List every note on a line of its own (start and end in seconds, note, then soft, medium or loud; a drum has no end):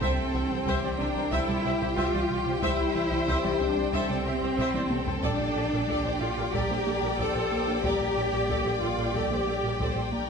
0.01 0.07 C2 medium
0.01 0.11 C2 medium
0.01 5.25 C2 medium
0.01 0.11 C3 medium
0.01 5.07 G3 medium
0.01 0.98 C4 medium
0.01 5.07 G4 medium
0.01 0.66 A4 medium
0.01 0.17 C5 medium
0.01 0.16 E5 medium
0.01 5.20 G5 medium
0.01 taiko loud
0.17 0.27 C2 medium
0.34 0.40 C2 medium
0.34 0.44 C2 medium
0.34 0.44 E3 medium
0.34 0.41 C5 medium
0.34 0.41 E5 soft
0.50 0.56 C2 medium
0.50 0.60 C2 medium
0.50 0.60 E3 medium
0.50 0.57 C5 medium
0.66 0.73 C2 medium
0.66 0.76 C2 medium
0.66 0.76 C3 medium
0.66 1.00 G4 medium
0.66 0.82 C5 medium
0.66 0.82 E5 medium
0.66 taiko medium
0.82 0.92 C2 medium
0.82 0.89 C2 medium
0.82 0.92 E3 medium
0.82 0.90 C5 soft
0.82 0.90 D5 medium
0.99 1.09 C2 medium
0.99 1.06 C2 medium
0.99 1.09 C4 medium
0.99 1.32 D4 medium
0.99 1.31 A#4 medium
0.99 1.06 C5 medium
0.99 1.06 E5 medium
1.15 1.22 C2 medium
1.15 1.25 C2 medium
1.15 1.25 C4 medium
1.15 1.23 C5 medium
1.31 1.38 C2 medium
1.31 1.42 C2 medium
1.31 1.42 C3 medium
1.31 1.97 E4 loud
1.31 1.65 A4 medium
1.31 1.47 C5 medium
1.31 1.48 E5 medium
1.31 taiko medium
1.47 1.54 C2 medium
1.47 1.58 C3 medium
1.47 1.58 G3 medium
1.47 1.55 C5 medium
1.47 1.55 D5 medium
1.64 1.70 C2 medium
1.64 1.75 C3 medium
1.64 1.75 G3 medium
1.64 2.63 G4 medium
1.64 1.71 C5 medium
1.64 1.71 E5 medium
1.80 1.87 C2 medium
1.80 1.91 C2 medium
1.80 1.91 C4 medium
1.80 1.88 C5 medium
1.80 taiko low-mid medium
1.96 2.03 C2 medium
1.96 2.07 C2 medium
1.96 2.07 C3 medium
1.96 2.62 F4 medium
1.96 2.13 C5 medium
1.96 2.13 E5 medium
1.96 taiko medium
2.13 2.19 C2 medium
2.13 2.24 C2 medium
2.13 2.23 E3 medium
2.13 2.20 C5 medium
2.13 2.20 D5 medium
2.30 2.40 C3 medium
2.46 2.52 C2 medium
2.46 2.56 C3 medium
2.46 2.53 C5 medium
2.62 2.68 C2 medium
2.62 2.73 C2 medium
2.62 2.72 C3 medium
2.62 3.58 E4 loud
2.62 2.78 C5 medium
2.62 3.91 C5 medium
2.62 2.78 E5 medium
2.62 taiko medium
2.79 2.89 C2 medium
2.94 3.01 C2 medium
2.94 3.05 C2 medium
2.94 3.05 E3 medium
2.94 3.02 C5 soft
2.94 3.03 E5 medium
3.11 3.17 C2 medium
3.11 3.21 C2 medium
3.11 3.21 E3 medium
3.11 3.18 C5 medium
3.27 3.34 C2 medium
3.27 3.38 C2 medium
3.27 3.37 C3 medium
3.27 3.43 C5 medium
3.27 3.43 E5 medium
3.27 taiko medium
3.43 3.50 C2 medium
3.43 3.54 C2 medium
3.43 3.53 E3 medium
3.43 3.51 C5 soft
3.43 3.51 D5 medium
3.60 3.70 C2 medium
3.60 3.67 C2 medium
3.60 3.70 C4 medium
3.60 3.93 D4 medium
3.60 3.67 C5 medium
3.60 3.67 E5 medium
3.76 3.83 C2 medium
3.76 3.86 C2 medium
3.76 3.86 C4 medium
3.76 3.84 C5 medium
3.92 3.99 C2 medium
3.92 4.03 C2 medium
3.92 4.02 C3 medium
3.92 5.23 C4 loud
3.92 4.26 A4 medium
3.92 4.09 C5 medium
3.92 4.09 E5 medium
3.92 taiko medium
4.08 4.16 C2 medium
4.08 4.20 C3 medium
4.08 4.18 G3 medium
4.08 4.17 C5 medium
4.08 4.17 D5 medium
4.25 4.32 C2 medium
4.25 4.35 C3 medium
4.25 4.35 G3 medium
4.25 4.59 G4 medium
4.25 4.33 C5 medium
4.25 4.33 E5 medium
4.41 4.51 C2 medium
4.41 4.49 C2 medium
4.41 4.51 C4 medium
4.41 4.49 C5 medium
4.57 4.68 C2 medium
4.57 4.65 C2 medium
4.57 4.67 C3 medium
4.57 4.91 E4 medium
4.57 4.74 C5 medium
4.57 4.74 E5 medium
4.57 taiko low-mid medium
4.74 4.85 C2 medium
4.74 4.82 C2 medium
4.74 4.84 E3 medium
4.74 4.81 C5 medium
4.74 4.82 D5 medium
4.74 taiko high loud
4.90 5.01 C3 medium
4.90 5.88 A4 medium
4.90 taiko high medium
5.06 5.14 C2 medium
5.06 5.17 C3 medium
5.06 5.16 G3 medium
5.06 5.14 C5 medium
5.06 taiko low medium
5.23 10.30 A#1 medium
5.23 5.30 A#1 medium
5.23 5.34 A#2 medium
5.23 5.33 G3 medium
5.23 10.30 A#3 medium
5.23 6.21 D4 loud
5.23 10.30 G4 medium
5.23 5.38 A4 medium
5.23 5.38 D5 medium
5.23 10.30 D5 medium
5.23 10.30 G5 medium
5.23 taiko medium
5.40 5.50 A#2 medium
5.56 5.63 A#1 medium
5.56 5.66 A#2 medium
5.56 5.66 A#3 medium
5.56 5.63 A4 medium
5.56 5.63 D5 soft
5.72 5.79 A#1 medium
5.72 5.83 A#2 medium
5.72 5.82 A#3 medium
5.72 5.79 A4 soft
5.72 5.79 A#4 medium
5.88 5.95 A#1 medium
5.88 5.98 A#2 medium
5.88 5.98 G3 medium
5.88 6.54 G4 medium
5.88 6.03 A4 medium
5.88 6.04 D5 medium
5.88 taiko medium
6.04 6.11 A#1 medium
6.04 6.15 A#2 medium
6.04 6.14 A#3 medium
6.04 6.11 A4 medium
6.04 6.11 C5 medium
6.20 6.27 A#1 medium
6.20 6.31 A#2 medium
6.20 6.53 F4 medium
6.20 6.31 G4 medium
6.20 6.27 A4 medium
6.20 6.27 D5 medium
6.37 6.43 A#1 medium
6.37 6.47 A#2 medium
6.37 6.47 G4 medium
6.37 6.44 A4 medium
6.37 6.44 A#4 soft
6.53 6.59 A#1 medium
6.53 6.64 A#2 medium
6.53 6.64 G3 medium
6.53 7.19 G4 medium
6.53 6.69 A4 medium
6.53 7.18 A#4 medium
6.53 6.69 D5 medium
6.53 taiko medium
6.69 6.76 A#1 medium
6.69 6.81 A#3 medium
6.69 6.80 D4 medium
6.69 6.77 A4 medium
6.69 6.77 C5 medium
6.86 6.93 A#1 medium
6.86 6.96 A#3 medium
6.86 6.96 D4 medium
6.86 6.94 A4 medium
6.86 6.94 D5 medium
7.03 7.09 A#1 medium
7.03 7.13 A#2 medium
7.03 7.13 G4 medium
7.03 7.10 A4 medium
7.03 7.10 A#4 medium
7.18 7.26 A#1 medium
7.18 7.29 A#2 medium
7.18 7.29 G3 medium
7.18 7.82 A4 medium
7.18 7.35 A4 medium
7.18 7.84 C5 medium
7.18 7.35 D5 medium
7.18 taiko medium
7.36 7.42 A#1 medium
7.36 7.45 A#2 medium
7.36 7.45 A#3 medium
7.36 7.43 A4 medium
7.36 7.43 C5 medium
7.52 7.61 A#3 medium
7.67 7.74 A#1 medium
7.67 7.77 A#3 medium
7.67 7.78 D4 medium
7.67 7.75 A4 medium
7.67 7.75 A#4 medium
7.84 7.90 A#1 medium
7.84 7.94 A#2 medium
7.84 7.94 G3 medium
7.84 8.80 G4 medium
7.84 7.99 A4 medium
7.84 8.17 A#4 medium
7.84 7.99 D5 medium
7.84 taiko medium
8.01 8.10 A#2 medium
8.16 8.23 A#1 soft
8.16 8.27 A#2 medium
8.16 8.26 A#3 medium
8.16 8.23 A4 soft
8.16 8.23 D5 soft
8.16 9.81 D5 medium
8.32 8.40 A#1 medium
8.32 8.43 A#2 medium
8.32 8.42 A#3 medium
8.32 8.40 A4 soft
8.32 8.40 A#4 soft
8.49 8.56 A#1 medium
8.49 8.59 A#2 medium
8.49 8.59 G3 medium
8.49 8.64 A4 medium
8.49 8.65 D5 medium
8.49 taiko medium
8.65 8.72 A#1 soft
8.65 8.75 A#2 medium
8.65 8.75 A#3 medium
8.65 8.72 A4 soft
8.65 8.72 C5 soft
8.81 8.88 A#1 soft
8.81 8.92 A#2 medium
8.81 9.14 F4 medium
8.81 8.92 G4 medium
8.81 8.89 A4 medium
8.81 8.89 D5 soft
8.98 9.05 A#1 soft
8.98 9.08 A#2 medium
8.98 9.08 G4 medium
8.98 9.05 A4 soft
8.98 9.05 A#4 soft
9.14 9.21 A#1 medium
9.14 9.24 A#2 medium
9.14 9.24 G3 medium
9.14 10.12 G4 medium
9.14 9.30 A4 medium
9.14 9.30 D5 medium
9.14 taiko medium
9.30 9.37 A#1 soft
9.30 9.41 A#3 medium
9.30 9.40 D4 medium
9.30 9.38 A4 medium
9.30 9.38 C5 medium
9.47 9.53 A#1 soft
9.47 9.57 A#3 medium
9.47 9.57 D4 medium
9.47 9.55 A4 medium
9.47 9.55 D5 soft
9.63 9.70 A#1 soft
9.63 9.74 A#2 medium
9.63 9.73 G4 medium
9.63 9.71 A4 soft
9.63 9.71 A#4 soft
9.79 9.86 A#1 medium
9.79 9.89 A#2 medium
9.79 9.89 G3 medium
9.79 9.95 A4 medium
9.79 10.13 C5 medium
9.79 9.95 D5 medium
9.79 taiko medium
9.95 10.02 A#1 soft
9.95 10.05 A#2 medium
9.95 10.03 A4 medium
9.95 10.03 C5 medium
10.12 10.22 A#3 medium
10.12 10.30 A#4 medium